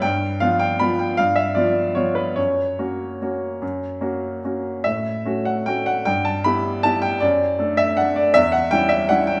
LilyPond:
\new Staff \with { instrumentName = "Upright piano" } { \time 3/4 \key fis \phrygian \tempo 4 = 153 << { g''4 f''8 g''8 b''8 g''8 | f''8 e''8 d''4 cis''8 b'8 | cis''2.~ | cis''2 r4 |
e''4. fis''8 g''8 fis''8 | g''8 a''8 b''4 a''8 g''8 | d''4. e''8 fis''8 d''8 | e''8 fis''8 g''8 e''8 fis''8 g''8 | } \\ { g,4 <f b f'>4 <f b f'>4 | g,4 <f b f'>4 <f b f'>4 | fis,4 <ais cis' fis'>4 <ais cis' fis'>4 | fis,4 <ais cis' fis'>4 <ais cis' fis'>4 |
a,4 <a cis' fis'>4 <a cis' fis'>4 | g,4 <b e' g'>4 <b e' g'>4 | fis,4 <a d' a'>4 <a d' a'>4 | e,4 <g cis' e'>4 <g cis' e'>4 | } >> }